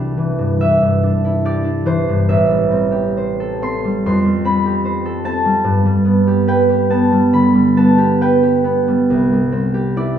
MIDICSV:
0, 0, Header, 1, 2, 480
1, 0, Start_track
1, 0, Tempo, 841515
1, 1292, Time_signature, 4, 2, 24, 8
1, 1292, Tempo, 890208
1, 2252, Tempo, 821918
1, 4172, Tempo, 870827
1, 5744, End_track
2, 0, Start_track
2, 0, Title_t, "Harp"
2, 0, Program_c, 0, 46
2, 0, Note_on_c, 0, 36, 53
2, 0, Note_on_c, 0, 52, 45
2, 0, Note_on_c, 0, 62, 45
2, 0, Note_on_c, 0, 64, 41
2, 0, Note_on_c, 0, 67, 43
2, 0, Note_on_c, 0, 74, 61
2, 0, Note_on_c, 0, 76, 71
2, 0, Note_on_c, 0, 79, 66
2, 92, Note_off_c, 0, 52, 0
2, 99, Note_on_c, 0, 52, 49
2, 220, Note_on_c, 0, 43, 44
2, 293, Note_off_c, 0, 74, 0
2, 339, Note_off_c, 0, 76, 0
2, 340, Note_off_c, 0, 52, 0
2, 345, Note_on_c, 0, 52, 44
2, 347, Note_on_c, 0, 76, 72
2, 459, Note_off_c, 0, 43, 0
2, 466, Note_on_c, 0, 43, 41
2, 583, Note_off_c, 0, 62, 0
2, 590, Note_on_c, 0, 62, 48
2, 704, Note_off_c, 0, 64, 0
2, 711, Note_on_c, 0, 64, 54
2, 821, Note_off_c, 0, 67, 0
2, 828, Note_on_c, 0, 67, 49
2, 830, Note_on_c, 0, 74, 79
2, 932, Note_off_c, 0, 62, 0
2, 939, Note_on_c, 0, 62, 51
2, 1051, Note_off_c, 0, 52, 0
2, 1058, Note_on_c, 0, 52, 53
2, 1063, Note_on_c, 0, 72, 82
2, 1185, Note_off_c, 0, 43, 0
2, 1192, Note_on_c, 0, 43, 50
2, 1297, Note_off_c, 0, 76, 0
2, 1303, Note_off_c, 0, 36, 0
2, 1305, Note_on_c, 0, 33, 54
2, 1305, Note_on_c, 0, 76, 80
2, 1310, Note_off_c, 0, 52, 0
2, 1310, Note_off_c, 0, 62, 0
2, 1316, Note_off_c, 0, 74, 0
2, 1318, Note_off_c, 0, 43, 0
2, 1414, Note_on_c, 0, 55, 50
2, 1534, Note_on_c, 0, 60, 51
2, 1638, Note_off_c, 0, 67, 0
2, 1644, Note_on_c, 0, 67, 49
2, 1775, Note_off_c, 0, 72, 0
2, 1781, Note_on_c, 0, 72, 53
2, 1812, Note_off_c, 0, 79, 0
2, 1903, Note_on_c, 0, 69, 52
2, 2016, Note_off_c, 0, 60, 0
2, 2023, Note_on_c, 0, 60, 51
2, 2027, Note_on_c, 0, 84, 81
2, 2138, Note_off_c, 0, 55, 0
2, 2144, Note_on_c, 0, 55, 45
2, 2253, Note_off_c, 0, 84, 0
2, 2260, Note_on_c, 0, 41, 57
2, 2262, Note_on_c, 0, 84, 81
2, 2277, Note_off_c, 0, 76, 0
2, 2278, Note_off_c, 0, 64, 0
2, 2279, Note_off_c, 0, 33, 0
2, 2365, Note_off_c, 0, 55, 0
2, 2372, Note_on_c, 0, 55, 50
2, 2478, Note_off_c, 0, 60, 0
2, 2485, Note_on_c, 0, 60, 53
2, 2490, Note_on_c, 0, 83, 84
2, 2602, Note_off_c, 0, 67, 0
2, 2609, Note_on_c, 0, 67, 56
2, 2714, Note_off_c, 0, 72, 0
2, 2721, Note_on_c, 0, 72, 55
2, 2834, Note_off_c, 0, 69, 0
2, 2841, Note_on_c, 0, 69, 56
2, 2946, Note_off_c, 0, 60, 0
2, 2953, Note_on_c, 0, 60, 57
2, 2956, Note_on_c, 0, 81, 97
2, 3067, Note_off_c, 0, 55, 0
2, 3074, Note_on_c, 0, 55, 48
2, 3185, Note_on_c, 0, 43, 62
2, 3212, Note_off_c, 0, 60, 0
2, 3213, Note_off_c, 0, 72, 0
2, 3222, Note_off_c, 0, 41, 0
2, 3222, Note_off_c, 0, 84, 0
2, 3292, Note_off_c, 0, 83, 0
2, 3303, Note_off_c, 0, 55, 0
2, 3310, Note_on_c, 0, 55, 55
2, 3422, Note_on_c, 0, 59, 50
2, 3546, Note_off_c, 0, 67, 0
2, 3553, Note_on_c, 0, 67, 51
2, 3671, Note_on_c, 0, 71, 55
2, 3676, Note_on_c, 0, 79, 85
2, 3790, Note_off_c, 0, 67, 0
2, 3797, Note_on_c, 0, 67, 51
2, 3912, Note_off_c, 0, 59, 0
2, 3915, Note_off_c, 0, 81, 0
2, 3919, Note_on_c, 0, 59, 53
2, 3922, Note_on_c, 0, 81, 78
2, 4041, Note_off_c, 0, 55, 0
2, 4048, Note_on_c, 0, 55, 49
2, 4169, Note_on_c, 0, 50, 47
2, 4173, Note_on_c, 0, 83, 89
2, 4281, Note_off_c, 0, 55, 0
2, 4287, Note_on_c, 0, 55, 47
2, 4405, Note_off_c, 0, 59, 0
2, 4407, Note_off_c, 0, 81, 0
2, 4412, Note_on_c, 0, 59, 51
2, 4414, Note_on_c, 0, 81, 86
2, 4523, Note_off_c, 0, 67, 0
2, 4529, Note_on_c, 0, 67, 55
2, 4651, Note_off_c, 0, 71, 0
2, 4651, Note_off_c, 0, 79, 0
2, 4656, Note_on_c, 0, 71, 53
2, 4660, Note_on_c, 0, 79, 75
2, 4771, Note_off_c, 0, 67, 0
2, 4777, Note_on_c, 0, 67, 48
2, 4887, Note_off_c, 0, 59, 0
2, 4893, Note_on_c, 0, 59, 54
2, 5017, Note_off_c, 0, 55, 0
2, 5023, Note_on_c, 0, 55, 52
2, 5065, Note_off_c, 0, 69, 0
2, 5146, Note_off_c, 0, 43, 0
2, 5146, Note_on_c, 0, 36, 58
2, 5151, Note_off_c, 0, 50, 0
2, 5151, Note_off_c, 0, 83, 0
2, 5152, Note_off_c, 0, 59, 0
2, 5154, Note_off_c, 0, 81, 0
2, 5155, Note_off_c, 0, 71, 0
2, 5262, Note_off_c, 0, 55, 0
2, 5269, Note_on_c, 0, 55, 46
2, 5378, Note_on_c, 0, 60, 49
2, 5492, Note_off_c, 0, 67, 0
2, 5499, Note_on_c, 0, 67, 53
2, 5623, Note_on_c, 0, 64, 48
2, 5625, Note_on_c, 0, 74, 77
2, 5729, Note_off_c, 0, 60, 0
2, 5744, Note_off_c, 0, 36, 0
2, 5744, Note_off_c, 0, 55, 0
2, 5744, Note_off_c, 0, 64, 0
2, 5744, Note_off_c, 0, 67, 0
2, 5744, Note_off_c, 0, 74, 0
2, 5744, Note_off_c, 0, 79, 0
2, 5744, End_track
0, 0, End_of_file